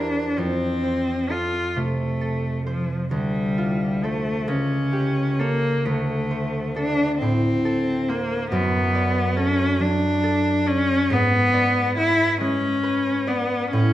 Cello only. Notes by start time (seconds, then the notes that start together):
Already playing: D4
0.39 C4
1.31 F4
1.77 A3
2.67 F3
3.14 G3
4.04 A3
4.48 C#4
5.39 A#3
5.85 A3
6.75 D4
7.21 C4
8.09 A#3
8.52 B3
9.36 C#4
9.81 D4
10.68 C#4
11.13 B3
11.98 E4
12.41 C#4
13.28 B3
13.72 C#4